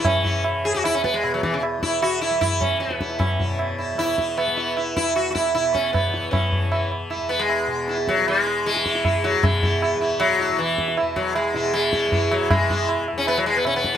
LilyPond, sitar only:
<<
  \new Staff \with { instrumentName = "Sitar" } { \time 4/4 \tempo 4 = 154 r8 e'8 r2. | r2. r8 e'8 | r8 e'8 r8 e'8 r8 e'8 r8 e'8 | e'8 r2. r8 |
r4 e'8 r8 e'8 r4. | e'8 r4. e'8 e'8 e'8 e'8 | r8 e'8 e'8 e'8 r8 e'8 r4 | e'8 r4 e'8 r8 e'8 e'8 r8 |
r8 e'8 r2. | }
  \new Staff \with { instrumentName = "Sitar" } { \time 4/4 cis'4. gis'16 fis'16 e'16 cis'16 b16 gis8 fis16 e16 cis16 | r8 e'8 fis'8 e'8 e'8 cis'8 b4 | cis'4. r8 e'4 b4 | r8 e'8 fis'16. fis'32 e'8 e'8 cis'8 b4 |
cis'4. r4 b16 gis4~ gis16~ | gis16 r16 fis8 gis4 gis4. fis8 | gis4. r8 fis4 e4 | r8 fis8 gis4 gis4. fis8 |
gis4. r16 cis'16 b16 fis16 gis16 b16 cis'16 b8 r16 | }
>>